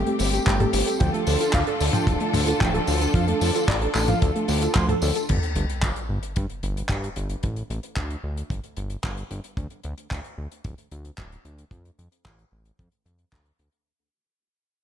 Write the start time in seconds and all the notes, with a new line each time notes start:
Already playing: A3 C4 G4
0.07 A3 G4, closed hi-hat
0.19 G1, open hi-hat, tambourine
0.33 G4, closed hi-hat, tambourine
0.47 G1 G3 G5, kick, clap, closed hi-hat, tambourine
0.60 G4 A4, closed hi-hat, high tom
0.73 G1 G4, open hi-hat, tambourine
0.87 G4 A4, closed hi-hat, tambourine
1.00 D2 D3 F3 D4 F4 A4 G5, kick, closed hi-hat, tambourine
1.14 A3 A4, closed hi-hat
1.27 D2 A4, open hi-hat, tambourine
1.40 F4 A4, closed hi-hat, tambourine
1.53 D2 D5 F5, kick, clap, closed hi-hat, high tom, tambourine
1.67 A4, closed hi-hat
1.80 D2 A4, open hi-hat, tambourine
1.93 F3 G5, closed hi-hat, high tom, tambourine
2.07 D1 A4, kick, closed hi-hat, tambourine
2.20 A3 A4, closed hi-hat
2.34 D2, open hi-hat, high tom, tambourine
2.47 F4 A4, closed hi-hat, tambourine
2.61 D1 F3 G5, kick, clap, closed hi-hat, tambourine
2.74 A4, closed hi-hat
2.87 D2 A4, open hi-hat, tambourine
3.01 A4, closed hi-hat, tambourine
3.14 F2 F3 F5, kick, closed hi-hat
3.28 A3 A4, closed hi-hat
3.41 F2 A4, open hi-hat, tambourine
3.54 F4 A4, closed hi-hat, tambourine
3.68 A1 D5, kick, clap, closed hi-hat, high tom, tambourine
3.82 A4, closed hi-hat
3.95 A1 A4, clap, open hi-hat, tambourine
4.08 F3 F5, closed hi-hat, high tom, tambourine
4.21 D2 A4, kick, closed hi-hat, tambourine
4.35 A3 A4, closed hi-hat
4.48 D2, open hi-hat, tambourine
4.62 F4 A4, closed hi-hat, tambourine
4.75 D2 F3 C6, kick, clap, closed hi-hat, tambourine
4.89 A4, closed hi-hat, high tom
5.02 D2 A4, open hi-hat, tambourine
5.15 A4, closed hi-hat, tambourine
5.29 G1, kick, closed hi-hat, crash, sub drop
5.43 closed hi-hat
5.56 G1, closed hi-hat
5.70 closed hi-hat
5.82 G1, kick, clap, closed hi-hat
5.96 closed hi-hat
6.09 G1
6.23 closed hi-hat
6.36 G2, kick, closed hi-hat
6.50 closed hi-hat
6.63 G1, closed hi-hat
6.77 closed hi-hat
6.89 G2, kick, clap, closed hi-hat
7.04 closed hi-hat
7.16 G1, closed hi-hat
7.30 closed hi-hat
7.43 A1, kick, closed hi-hat
7.56 closed hi-hat
7.70 A1, closed hi-hat
7.83 closed hi-hat
7.96 D2, kick, clap, closed hi-hat
8.10 closed hi-hat
8.24 D2
8.37 closed hi-hat
8.50 G1, kick, closed hi-hat
8.64 closed hi-hat
8.77 G1, closed hi-hat
8.90 closed hi-hat
9.03 G1, kick, clap, closed hi-hat
9.17 closed hi-hat
9.31 G1, closed hi-hat
9.44 closed hi-hat
9.57 D2, kick, closed hi-hat
9.70 closed hi-hat
9.84 D2, closed hi-hat
9.98 closed hi-hat
10.11 D2, kick, clap, closed hi-hat
10.24 closed hi-hat
10.38 D2
10.52 closed hi-hat
10.64 D1, kick, closed hi-hat
10.78 closed hi-hat
10.91 D2, closed hi-hat
11.05 closed hi-hat
11.18 D1, kick, clap, closed hi-hat
11.32 closed hi-hat
11.45 D2, closed hi-hat
11.58 closed hi-hat
11.71 F2, kick, closed hi-hat
11.85 closed hi-hat
11.99 F2, closed hi-hat
12.12 closed hi-hat
12.25 A1, kick, clap, closed hi-hat
12.39 closed hi-hat
12.52 A1
12.65 closed hi-hat
12.79 F2, kick, closed hi-hat
12.92 closed hi-hat
13.06 F2, closed hi-hat
13.19 closed hi-hat
13.32 D2, kick, clap, closed hi-hat
13.45 closed hi-hat
13.59 D2, closed hi-hat
13.72 closed hi-hat